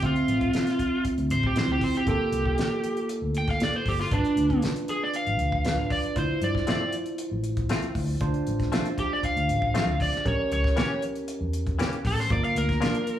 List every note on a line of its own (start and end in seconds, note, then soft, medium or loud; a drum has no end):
0.02 0.13 D2 medium
0.02 1.53 C4 medium
0.02 1.53 F4 medium
0.02 1.03 F4 medium
0.02 1.53 E5 medium
0.02 kick loud
0.02 closed hi-hat medium
0.16 closed hi-hat soft
0.28 0.48 A1 loud
0.28 closed hi-hat medium
0.41 kick medium
0.41 closed hi-hat soft
0.54 snare medium
0.54 closed hi-hat medium
0.67 snare soft
0.67 closed hi-hat soft
0.79 kick medium
0.79 closed hi-hat medium
1.05 kick medium
1.05 closed hi-hat medium
1.18 1.32 D2 medium
1.18 closed hi-hat soft
1.30 1.69 A1 medium
1.30 1.44 C5 medium
1.30 closed hi-hat medium
1.43 1.57 G4 medium
1.43 kick medium
1.56 2.07 C4 soft
1.56 2.07 E4 soft
1.56 2.06 F4 soft
1.56 1.70 C5 medium
1.56 snare loud
1.56 closed hi-hat medium
1.69 1.78 D2 medium
1.69 1.83 G4 medium
1.81 1.95 C5 medium
1.81 kick medium
1.81 open hi-hat medium
1.94 2.08 G4 medium
1.94 muted fingered electric bass stroke soft
1.94 closed hi-hat soft
2.07 2.17 G1 medium
2.07 4.08 A#3 medium
2.07 4.08 F4 medium
2.07 3.08 G4 medium
2.07 4.08 A4 medium
2.07 kick loud
2.07 closed hi-hat medium
2.20 muted fingered electric bass stroke soft
2.32 2.52 C2 medium
2.32 closed hi-hat medium
2.45 kick medium
2.58 snare loud
2.58 closed hi-hat medium
2.84 closed hi-hat medium
2.97 closed hi-hat soft
3.09 closed hi-hat medium
3.22 3.61 D2 medium
3.35 3.49 G5 loud
3.35 closed hi-hat medium
3.48 3.62 F5 medium
3.48 kick medium
3.48 snare soft
3.48 closed hi-hat soft
3.60 3.75 D5 medium
3.60 snare loud
3.60 closed hi-hat medium
3.73 3.87 C5 medium
3.73 muted fingered electric bass stroke soft
3.73 closed hi-hat soft
3.86 4.05 G1 medium
3.86 4.00 G4 medium
3.86 kick medium
3.86 open hi-hat medium
4.00 4.12 F4 medium
4.00 snare soft
4.11 4.22 G#1 medium
4.11 5.62 D4 medium
4.11 4.62 D4 medium
4.11 5.62 F4 medium
4.11 5.62 B4 medium
4.11 kick loud
4.11 closed hi-hat medium
4.25 closed hi-hat soft
4.37 4.56 D2 medium
4.37 closed hi-hat medium
4.50 kick medium
4.50 closed hi-hat soft
4.62 snare loud
4.62 closed hi-hat medium
4.76 closed hi-hat soft
4.88 5.02 G#4 medium
4.88 closed hi-hat medium
5.03 5.15 D5 medium
5.14 5.89 F5 loud
5.14 closed hi-hat medium
5.27 5.39 G#1 medium
5.27 closed hi-hat soft
5.39 5.78 D2 medium
5.39 closed hi-hat medium
5.52 kick medium
5.65 6.16 D4 soft
5.65 6.15 F4 soft
5.65 6.16 B4 medium
5.65 snare loud
5.65 closed hi-hat medium
5.78 5.87 G#1 medium
5.90 6.16 D5 medium
5.90 kick medium
5.90 open hi-hat medium
6.03 muted fingered electric bass stroke soft
6.03 closed hi-hat soft
6.16 6.26 D2 loud
6.16 8.17 E4 medium
6.16 8.17 F4 medium
6.16 8.17 C5 medium
6.16 6.42 C5 medium
6.16 kick loud
6.16 closed hi-hat medium
6.29 muted fingered electric bass stroke soft
6.42 6.61 G2 loud
6.42 6.68 D5 medium
6.42 closed hi-hat medium
6.55 kick medium
6.55 snare soft
6.67 6.83 F3 medium
6.67 6.83 A3 medium
6.67 6.84 C4 medium
6.67 6.84 F4 medium
6.67 6.94 D5 medium
6.67 snare loud
6.67 closed hi-hat medium
6.92 closed hi-hat medium
7.06 closed hi-hat soft
7.18 closed hi-hat medium
7.31 7.71 A1 medium
7.44 closed hi-hat medium
7.57 kick medium
7.57 closed hi-hat soft
7.69 7.85 F3 medium
7.69 7.86 A3 medium
7.69 7.86 C4 medium
7.69 7.86 F4 loud
7.69 snare loud
7.69 closed hi-hat medium
7.82 muted fingered electric bass stroke soft
7.82 closed hi-hat soft
7.95 8.15 D2 medium
7.95 kick medium
7.95 open hi-hat medium
8.20 8.31 D2 medium
8.20 10.22 D4 medium
8.20 10.22 F4 medium
8.20 10.22 C5 medium
8.20 kick loud
8.20 closed hi-hat medium
8.34 closed hi-hat soft
8.47 8.66 A1 loud
8.47 closed hi-hat medium
8.60 kick medium
8.60 snare soft
8.60 closed hi-hat soft
8.72 8.88 F3 medium
8.72 8.88 A3 medium
8.72 8.88 C4 medium
8.72 8.88 F4 medium
8.72 snare loud
8.72 closed hi-hat medium
8.85 closed hi-hat soft
8.98 9.11 G4 medium
8.98 kick medium
8.98 closed hi-hat medium
9.13 9.24 D5 medium
9.23 9.98 F5 loud
9.23 kick medium
9.23 closed hi-hat medium
9.36 9.50 D2 medium
9.36 closed hi-hat soft
9.48 9.88 A1 medium
9.48 closed hi-hat medium
9.62 kick medium
9.74 9.90 F3 medium
9.74 9.90 A3 medium
9.74 9.91 C4 medium
9.74 9.91 F4 medium
9.74 snare loud
9.74 closed hi-hat medium
9.88 9.97 D2 medium
10.00 10.26 D5 medium
10.00 kick medium
10.00 open hi-hat medium
10.14 muted fingered electric bass stroke soft
10.14 snare soft
10.14 closed hi-hat soft
10.25 10.36 A1 medium
10.25 12.26 C#4 medium
10.25 12.26 G4 medium
10.25 12.26 A#4 medium
10.25 10.51 C#5 medium
10.25 kick loud
10.25 closed hi-hat medium
10.39 muted fingered electric bass stroke soft
10.51 10.71 C#2 loud
10.51 10.77 C#5 medium
10.51 closed hi-hat medium
10.64 kick medium
10.64 snare soft
10.76 10.92 E3 medium
10.76 10.92 A#3 medium
10.76 10.93 C#4 medium
10.76 10.93 G4 medium
10.76 11.02 C#5 medium
10.76 snare loud
10.76 closed hi-hat medium
11.02 closed hi-hat medium
11.15 closed hi-hat soft
11.28 closed hi-hat medium
11.41 11.80 E2 medium
11.53 closed hi-hat medium
11.67 kick medium
11.67 closed hi-hat soft
11.79 11.94 E3 medium
11.79 11.95 A#3 medium
11.79 11.95 C#4 medium
11.79 11.95 G4 medium
11.79 snare loud
11.79 closed hi-hat medium
11.92 muted fingered electric bass stroke soft
11.92 closed hi-hat soft
12.05 12.24 A1 medium
12.05 12.18 A4 medium
12.05 kick medium
12.05 open hi-hat medium
12.20 12.31 C5 medium
12.20 snare soft
12.30 12.40 G1 loud
12.30 13.19 A#3 medium
12.30 13.19 F4 medium
12.30 13.19 A#4 medium
12.30 12.44 D5 medium
12.30 kick loud
12.30 closed hi-hat medium
12.44 12.56 F5 medium
12.44 closed hi-hat soft
12.56 12.75 D2 loud
12.56 13.19 A#4 medium
12.56 closed hi-hat medium
12.69 kick medium
12.69 snare soft
12.69 closed hi-hat soft
12.81 12.97 F3 medium
12.81 12.97 A#3 medium
12.81 12.97 D4 medium
12.81 12.97 F4 medium
12.81 snare loud
12.81 closed hi-hat medium
12.95 closed hi-hat soft
13.07 closed hi-hat medium